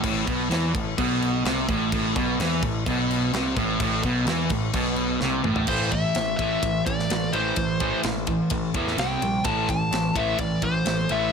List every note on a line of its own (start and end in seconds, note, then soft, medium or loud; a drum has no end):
0.03 0.26 A1 medium
0.03 0.27 A2 loud
0.03 kick loud
0.03 crash medium
0.27 0.49 B1 medium
0.27 0.50 B2 loud
0.27 kick loud
0.27 crash medium
0.50 0.73 E2 medium
0.50 0.73 E3 loud
0.50 snare loud
0.50 crash medium
0.73 0.97 A1 medium
0.73 0.93 A2 medium
0.73 kick loud
0.73 crash medium
0.97 1.42 B1 medium
0.97 1.44 B2 loud
0.97 kick loud
0.97 crash medium
1.22 crash medium
1.45 1.67 C2 loud
1.45 1.68 C3 loud
1.45 snare loud
1.45 crash medium
1.69 1.91 A1 loud
1.69 1.92 A2 loud
1.69 kick loud
1.69 crash medium
1.92 2.14 A1 medium
1.92 2.16 A2 loud
1.92 kick loud
1.92 crash medium
2.16 2.38 B1 loud
2.16 2.39 B2 loud
2.16 kick loud
2.16 crash medium
2.39 2.61 E2 loud
2.39 2.63 E3 loud
2.39 snare loud
2.39 crash medium
2.62 2.85 A1 medium
2.62 2.83 A2 medium
2.62 kick medium
2.62 crash medium
2.86 3.30 B1 medium
2.86 3.34 B2 loud
2.86 kick loud
2.86 crash medium
3.11 crash medium
3.33 3.55 C2 loud
3.33 3.57 C3 loud
3.33 snare loud
3.33 crash medium
3.56 3.78 A1 loud
3.56 3.81 A2 loud
3.56 kick medium
3.56 crash medium
3.80 4.02 A1 medium
3.80 4.04 A2 loud
3.80 kick loud
3.80 crash medium
4.03 4.25 B1 medium
4.03 4.27 B2 loud
4.03 kick loud
4.03 crash medium
4.25 4.48 E2 medium
4.25 4.50 E3 loud
4.25 snare loud
4.25 crash medium
4.49 4.73 A1 medium
4.49 4.70 A2 medium
4.49 kick loud
4.49 crash medium
4.73 5.18 B1 medium
4.73 5.22 B2 loud
4.73 kick loud
4.73 crash medium
4.96 crash medium
5.20 5.43 C2 medium
5.20 5.45 C3 loud
5.20 snare medium
5.44 5.66 A1 loud
5.44 5.68 A2 loud
5.44 mid tom medium
5.56 floor tom medium
5.67 6.04 A1 medium
5.67 5.91 A2 medium
5.67 5.92 E3 medium
5.67 5.93 C5 medium
5.67 kick loud
5.67 crash loud
5.71 5.92 A3 medium
5.91 6.15 A2 medium
5.91 6.15 E3 medium
5.91 6.36 E5 loud
5.91 kick medium
5.91 ride medium
6.15 6.34 A1 medium
6.15 6.38 A2 medium
6.15 6.38 E3 medium
6.15 snare medium
6.15 ride medium
6.37 6.57 A1 medium
6.37 6.62 A2 medium
6.37 6.62 E3 medium
6.37 6.62 A3 medium
6.37 6.85 E5 loud
6.37 kick medium
6.37 ride medium
6.62 6.81 A1 medium
6.62 6.85 A2 medium
6.62 6.85 E3 medium
6.62 kick loud
6.62 ride medium
6.86 7.05 A1 medium
6.86 7.08 A2 medium
6.86 7.08 E3 medium
6.86 7.35 D5 medium
6.86 kick medium
6.86 ride medium
6.99 snare soft
7.10 7.28 A1 medium
7.10 7.31 A2 medium
7.10 7.32 E3 medium
7.10 snare loud
7.10 ride medium
7.33 7.51 A1 medium
7.33 7.55 A2 medium
7.33 7.56 E3 medium
7.33 7.56 A3 loud
7.33 8.00 C5 medium
7.33 ride medium
7.56 7.93 A1 medium
7.56 7.78 A2 medium
7.56 7.79 E3 medium
7.56 kick loud
7.56 ride medium
7.80 8.03 A2 medium
7.80 8.03 E3 medium
7.80 8.03 A3 medium
7.80 kick medium
7.80 ride medium
8.03 8.40 A1 medium
8.03 8.25 A2 medium
8.03 8.26 E3 medium
8.03 snare loud
8.03 ride medium
8.27 8.49 A2 medium
8.27 8.49 E3 medium
8.27 kick medium
8.27 ride medium
8.50 8.69 A1 medium
8.50 8.72 A2 medium
8.50 8.72 E3 medium
8.50 kick loud
8.50 ride loud
8.74 8.92 E2 medium
8.74 8.97 A2 medium
8.74 8.97 E3 medium
8.74 8.97 A3 loud
8.74 kick medium
8.74 ride medium
8.87 snare soft
8.97 9.16 C2 medium
8.97 9.20 C3 medium
8.97 9.21 G3 medium
8.97 9.21 C4 medium
8.97 9.44 G5 medium
8.97 snare loud
8.97 ride medium
9.22 9.40 A#1 medium
9.22 9.43 C3 medium
9.22 9.43 G3 medium
9.22 ride medium
9.45 9.81 A1 medium
9.45 9.67 A2 medium
9.45 9.68 E3 medium
9.45 9.68 A3 loud
9.45 9.67 A5 loud
9.45 kick loud
9.45 ride medium
9.69 9.90 A2 medium
9.69 9.90 E3 medium
9.69 10.18 A5 loud
9.69 kick medium
9.69 ride medium
9.91 10.10 A1 medium
9.91 10.13 A2 medium
9.91 10.13 E3 medium
9.91 snare loud
9.91 ride medium
10.15 10.33 A1 medium
10.15 10.37 A2 medium
10.15 10.37 E3 medium
10.15 10.38 A3 medium
10.15 10.40 E5 medium
10.15 kick medium
10.15 ride medium
10.38 10.57 A1 medium
10.38 10.60 A2 medium
10.38 10.60 E3 medium
10.38 10.64 D5 medium
10.38 kick loud
10.38 ride medium
10.62 10.80 A1 medium
10.62 10.83 A2 medium
10.62 10.83 E3 medium
10.62 11.11 C5 medium
10.62 kick medium
10.62 ride medium
10.85 11.03 A1 medium
10.85 11.07 A2 medium
10.85 11.07 E3 medium
10.85 snare loud
10.85 ride medium
11.09 11.28 A1 medium
11.09 11.31 A2 medium
11.09 11.32 E3 medium
11.09 11.32 A3 loud
11.09 11.32 E5 medium
11.09 ride medium